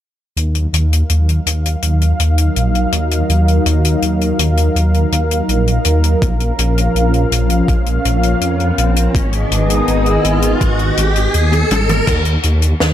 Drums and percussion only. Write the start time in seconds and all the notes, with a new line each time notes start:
0.37 closed hi-hat
0.55 closed hi-hat
0.74 closed hi-hat
0.93 closed hi-hat
1.09 closed hi-hat
1.29 closed hi-hat
1.47 closed hi-hat
1.66 closed hi-hat
1.82 closed hi-hat
2.01 closed hi-hat
2.20 closed hi-hat
2.38 closed hi-hat
2.56 closed hi-hat
2.75 closed hi-hat
2.92 closed hi-hat
3.11 closed hi-hat
3.29 closed hi-hat
3.48 closed hi-hat
3.66 closed hi-hat
3.85 closed hi-hat
4.02 closed hi-hat
4.21 closed hi-hat
4.39 closed hi-hat
4.57 closed hi-hat
4.76 closed hi-hat
4.94 closed hi-hat
5.12 closed hi-hat
5.31 closed hi-hat
5.49 closed hi-hat
5.67 closed hi-hat
5.85 closed hi-hat
6.04 closed hi-hat
6.22 kick, closed hi-hat
6.40 closed hi-hat
6.59 closed hi-hat
6.78 closed hi-hat
6.96 closed hi-hat
7.14 closed hi-hat
7.32 closed hi-hat
7.50 closed hi-hat
7.68 kick, closed hi-hat
7.86 closed hi-hat
8.05 closed hi-hat
8.23 closed hi-hat
8.41 closed hi-hat
8.60 closed hi-hat
8.78 closed hi-hat
8.96 closed hi-hat
9.15 kick, closed hi-hat
9.33 closed hi-hat
9.52 closed hi-hat
9.70 closed hi-hat
9.88 closed hi-hat
10.06 closed hi-hat
10.24 closed hi-hat
10.42 closed hi-hat
10.61 kick, closed hi-hat
10.79 closed hi-hat
10.97 closed hi-hat
11.16 closed hi-hat
11.34 closed hi-hat
11.52 closed hi-hat, high tom
11.71 closed hi-hat, mid tom
11.89 closed hi-hat, mid tom
12.07 kick, closed hi-hat, crash
12.25 closed hi-hat
12.43 closed hi-hat
12.62 closed hi-hat
12.80 snare, closed hi-hat